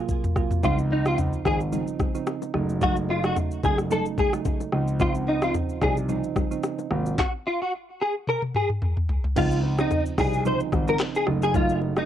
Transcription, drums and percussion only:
0.09 kick, shaker
0.24 mid tom, shaker
0.36 kick, cross-stick, shaker
0.51 mid tom, shaker
0.63 kick, low conga, shaker
0.78 shaker
0.91 low bongo
1.05 cross-stick, shaker
1.18 mid tom, high bongo, shaker
1.33 shaker
1.45 kick, cross-stick, high bongo, low bongo, shaker
1.60 shaker
1.72 low conga, shaker
1.87 shaker
2.00 kick, cross-stick, low bongo, low conga, shaker
2.15 shaker
2.27 cross-stick, high bongo, shaker
2.42 low bongo, shaker
2.54 cross-stick
2.69 shaker
2.81 kick, low conga, shaker
2.96 shaker
3.09 low bongo
3.24 cross-stick, shaker
3.36 mid tom, high bongo, shaker
3.51 shaker
3.63 kick, high bongo, low bongo, shaker
3.78 cross-stick, shaker
3.91 low conga, shaker
4.06 shaker
4.18 kick, low bongo, low conga, shaker
4.33 cross-stick, shaker
4.45 kick, high bongo, shaker
4.60 low bongo, shaker
4.72 cross-stick
4.88 shaker
5.00 kick, low conga, shaker
5.15 shaker
5.27 low bongo
5.42 cross-stick, shaker
5.54 mid tom, high bongo, shaker
5.69 shaker
5.82 kick, cross-stick, high bongo, low bongo, shaker
5.97 shaker
6.09 low conga, shaker
6.24 shaker
6.36 kick, cross-stick, low bongo, low conga, shaker
6.51 shaker
6.63 cross-stick, high bongo, shaker
6.79 low bongo, shaker
6.91 cross-stick
7.06 shaker
7.18 kick, snare
8.27 high tom
8.42 high tom
8.54 mid tom
8.69 mid tom
8.82 mid tom
8.97 mid tom
9.09 floor tom
9.24 floor tom
9.36 kick, crash, low conga, shaker
9.51 shaker
9.63 low bongo
9.78 cross-stick, shaker
9.91 mid tom, high bongo, shaker
10.06 shaker
10.18 kick, cross-stick, open hi-hat, high bongo, low bongo, shaker
10.33 shaker
10.45 low conga, shaker
10.60 shaker
10.72 kick, cross-stick, low bongo, low conga, shaker
10.88 shaker
11.00 cross-stick, clap, high bongo, shaker
11.15 shaker
11.27 cross-stick
11.42 high bongo, shaker
11.54 kick, low conga, shaker
11.69 shaker
11.82 low bongo
11.96 cross-stick, shaker

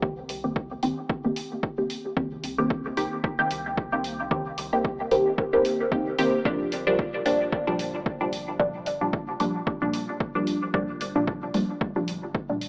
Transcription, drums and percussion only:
0.02 kick
0.29 open hi-hat
0.56 kick
0.83 open hi-hat
1.10 kick
1.36 open hi-hat
1.63 kick
1.90 open hi-hat
2.17 kick
2.44 open hi-hat
2.70 kick
2.97 open hi-hat
3.24 kick
3.51 open hi-hat
3.77 kick
4.04 open hi-hat
4.31 kick
4.58 open hi-hat
4.85 kick
5.11 open hi-hat
5.38 kick
5.65 open hi-hat
5.92 kick
6.18 open hi-hat
6.45 kick
6.72 open hi-hat
6.99 kick
7.26 open hi-hat
7.52 kick
7.79 open hi-hat
8.06 kick
8.33 open hi-hat
8.60 kick
8.86 open hi-hat
9.13 kick
9.40 open hi-hat
9.67 kick
9.93 open hi-hat
10.20 kick
10.47 open hi-hat
10.74 kick
11.01 open hi-hat
11.27 kick
11.54 open hi-hat
11.81 kick
12.08 open hi-hat
12.35 kick
12.61 open hi-hat

